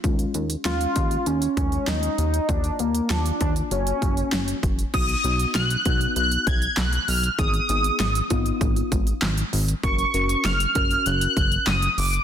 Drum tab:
CC |----------------|----------------|x---------------|----------------|
HH |xxxxxxxxxxxxxxxx|xxxxxxxxxxxxxxxx|xxxxxxxxxxxxxxox|xxxxxxxxxxxxxxox|
CP |----------------|----------------|------------x---|------------x---|
SD |----o-------o---|----o-------o---|----o-------o---|----o-------o---|
BD |o-----o---o-----|o-----o---o---o-|o-----o---o-----|o-----o-o-o-----|

CC |----------------|
HH |xxxxxxxxxxxxxxox|
CP |------------x---|
SD |----o-------o---|
BD |o-----o---o-----|